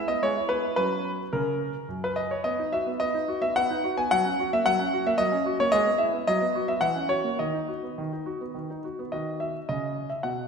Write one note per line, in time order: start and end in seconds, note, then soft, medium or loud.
0.08 0.22 B3 medium
0.08 0.21 D#5 medium
0.23 0.35 G#3 medium
0.23 0.50 C#5 medium
0.37 0.50 E4 medium
0.49 0.64 B3 soft
0.49 0.75 B4 medium
0.63 0.77 E4 soft
0.76 1.16 F#3 medium
0.76 1.22 C#4 soft
0.76 1.22 F#4 soft
0.76 1.10 B4 loud
1.33 1.72 C#3 medium
1.33 1.85 A#4 medium
1.89 2.28 F#2 soft
2.04 2.17 B4 medium
2.16 2.31 D#5 medium
2.31 2.45 C#5 medium
2.44 2.58 B3 medium
2.44 2.72 D#5 medium
2.59 2.74 D#4 soft
2.73 2.88 F#4 soft
2.73 2.89 E5 medium
2.86 2.99 B3 soft
3.00 3.14 B3 medium
3.00 3.41 D#5 loud
3.14 3.29 D#4 soft
3.28 3.43 F#4 medium
3.42 3.55 B3 soft
3.42 3.55 E5 medium
3.56 3.69 B3 medium
3.56 3.97 F#5 loud
3.70 3.84 D#4 medium
3.84 3.98 F#4 medium
3.97 4.11 B3 medium
3.97 4.11 G#5 medium
4.11 4.24 F#3 medium
4.11 4.48 F#5 loud
4.25 4.39 C#4 soft
4.40 4.53 F#4 medium
4.53 4.67 A#3 medium
4.53 4.66 E5 loud
4.66 4.79 F#3 medium
4.66 5.06 F#5 loud
4.79 4.93 C#4 medium
4.93 5.07 F#4 medium
5.07 5.20 A#3 medium
5.07 5.20 E5 medium
5.18 5.32 F#3 medium
5.18 5.55 D#5 loud
5.32 5.47 C#4 medium
5.46 5.60 F#4 medium
5.60 5.73 A#3 medium
5.60 5.73 C#5 medium
5.72 5.86 G#3 medium
5.72 5.97 D#5 loud
5.86 6.01 B3 soft
5.98 6.14 E4 medium
5.98 6.15 E5 medium
6.13 6.27 B3 soft
6.27 6.41 F#3 medium
6.27 6.68 D#5 loud
6.41 6.55 B3 medium
6.55 6.69 F#4 medium
6.68 6.82 B3 soft
6.68 6.82 E5 medium
6.81 6.95 E3 medium
6.81 7.09 F#5 medium
6.95 7.11 C#4 soft
7.09 7.25 F#4 soft
7.09 7.38 C#5 medium
7.24 7.39 A#3 soft
7.39 7.53 D#3 soft
7.39 8.79 D#5 medium
7.54 7.69 D#4 soft
7.68 7.83 F#4 soft
7.83 7.98 B3 soft
7.98 8.11 D#3 medium
8.12 8.27 D#4 soft
8.26 8.41 F#4 soft
8.41 8.55 B3 soft
8.54 8.68 D#3 soft
8.70 8.85 D#4 soft
8.84 8.99 F#4 soft
8.99 9.13 B3 soft
9.12 9.53 D#3 soft
9.12 10.48 F#4 soft
9.12 9.37 D#5 medium
9.40 9.57 E5 medium
9.69 10.08 C#3 medium
9.69 10.10 D#5 medium
10.10 10.23 E5 medium
10.23 10.48 B2 medium
10.23 10.48 F#5 medium